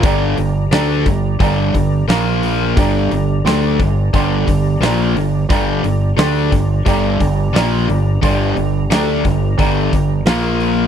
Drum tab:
HH |oooooooo|oooooooo|oooooooo|oooooooo|
SD |--o---o-|--o---o-|--o---o-|--o---o-|
BD |o--ooo--|o--ooo--|o--ooo--|o--ooo--|